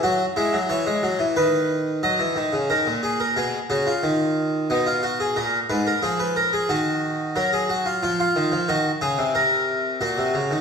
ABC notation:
X:1
M:4/4
L:1/16
Q:1/4=90
K:B
V:1 name="Harpsichord"
F2 E2 c4 B4 d4 | [K:Ebm] B2 A B A2 G F4- F E F G A | B2 c B A c B A G4 B A G F | F F3 G2 A2 B4 G4 |]
V:2 name="Harpsichord" clef=bass
F,2 G, F, E, G, F, E, D,4 F, E, D, C, | [K:Ebm] E, B,,3 C,2 D,2 E,4 C,4 | B,,2 A,,2 F,4 E,4 G,4 | F,2 E, F, E,2 D, =C,4- C, B,, C, D, E, |]